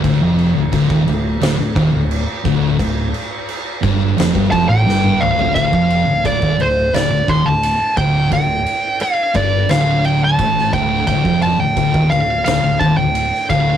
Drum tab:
CC |x-x-x-x-x-x-x-x-|x-x-x-x-x-x-----|----------------|----------------|
RD |----------------|----------------|x-x-x-x-x-x-x-x-|x-x-x-x-x-x-x-x-|
SD |--------o-------|--------o---o---|--------o-------|--------o----o--|
T1 |----------------|-------------o--|----------------|----------------|
T2 |----------------|--------------o-|----------------|----------------|
FT |----------------|---------------o|----------------|----------------|
BD |o---oo----o---o-|o-----o--oo-----|oo--oo----o---o-|o-----o-----o-o-|

CC |----------------|
RD |x-x-x-x-x-x-x-x-|
SD |--------o----o--|
T1 |----------------|
T2 |----------------|
FT |----------------|
BD |oo--oo----o---o-|